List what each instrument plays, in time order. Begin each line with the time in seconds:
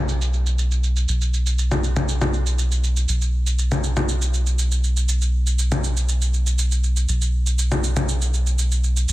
Already playing: analog synth bass B1
0.09 shaker
0.21 shaker
0.34 shaker
0.46 shaker
0.59 shaker
0.71 shaker
0.84 shaker
0.96 shaker
1.09 analog synth bass B1, shaker
1.22 shaker
1.34 shaker
1.47 shaker
1.59 shaker
1.71 low conga, shaker
1.84 shaker
1.96 low conga, shaker
2.09 shaker
2.21 low conga, shaker
2.34 shaker
2.46 shaker
2.59 shaker
2.72 shaker
2.84 shaker
2.97 shaker
3.09 analog synth bass B1, shaker
3.22 shaker
3.47 shaker
3.59 shaker
3.72 low conga, shaker
3.84 shaker
3.97 low conga, shaker
4.09 shaker
4.22 shaker
4.34 shaker
4.47 shaker
4.59 shaker
4.72 shaker
4.84 shaker
4.97 shaker
5.09 shaker
5.22 shaker
5.47 shaker
5.59 shaker
5.72 low conga, shaker
5.84 shaker
5.97 shaker
6.09 shaker
6.22 shaker
6.34 shaker
6.47 shaker
6.59 shaker
6.72 shaker
6.84 shaker
6.97 shaker
7.09 analog synth bass B1, shaker
7.22 shaker
7.47 shaker
7.59 shaker
7.72 low conga, shaker
7.84 shaker
7.97 low conga, shaker
8.09 shaker
8.22 shaker
8.34 shaker
8.47 shaker
8.59 shaker
8.72 shaker
8.84 shaker
8.97 shaker
9.09 analog synth bass B1, shaker